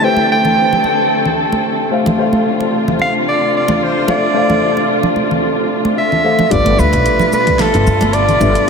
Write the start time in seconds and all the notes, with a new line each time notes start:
Already playing: D3 A3 C4 E4 G4 B4 C5
0.00 A3 E4 G4 A4 B4 C5
0.04 G5
0.17 high conga
0.32 G5
0.45 muted conga, low conga
0.73 low conga
0.84 high conga
1.26 low conga
1.52 high conga
1.91 C3 A3 D4 F4 A4 C5 E5 F5
2.06 muted conga, low conga
2.18 A3 A4 C5 E5 F5
2.33 high conga
2.61 muted conga
2.88 low conga
2.99 F5, high conga
3.28 D5
3.57 D5
3.68 muted conga, high conga, low conga
3.84 C5
4.07 A3 A4 C5 D5 E5 F5, muted conga, low conga
4.34 A3 A4 C5 E5 F5
4.50 high conga, low conga
4.77 muted conga
5.03 low conga
5.16 high conga
5.31 low conga
5.85 high conga
5.98 E5
6.12 low conga
6.24 A3 A4 C5 E5 F5
6.39 muted conga, low conga
6.50 G1 B2 G3 A3 D4 F4 A4 B4 D5 E5, kick, closed hi-hat, shaker
6.66 closed hi-hat, high conga, low conga
6.79 D2 B4, shaker
6.93 B1, kick, closed hi-hat, muted conga, shaker
7.06 closed hi-hat, shaker
7.19 low conga, shaker
7.33 B4, high conga, shaker
7.47 kick, closed hi-hat, low conga, shaker
7.59 A4, snare, closed hi-hat, shaker
7.74 G1, closed hi-hat, shaker
7.87 G2, shaker
8.01 G1, closed hi-hat, muted conga, high conga, shaker
8.13 D5, closed hi-hat, shaker
8.29 closed hi-hat, low conga, shaker
8.40 G1 G3 D4 F4 A4 B4 E5, muted conga, low conga, shaker
8.55 closed hi-hat, shaker
8.66 G3